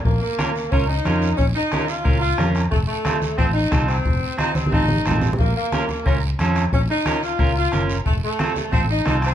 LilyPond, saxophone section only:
\new Staff \with { instrumentName = "Saxophone section" } { \time 4/4 \key bes \minor \tempo 4 = 180 bes8 bes4. des'8 ees'4. | des'8 ees'4 f'4 f'4 r8 | a8 a4. c'8 ees'4 c'8~ | c'4 ees'8 c'8 ees'4. r8 |
bes8 bes4. des'8 r4. | des'8 ees'4 f'4 f'4 r8 | a8 a4. c'8 ees'8 ees'8 c'8 | }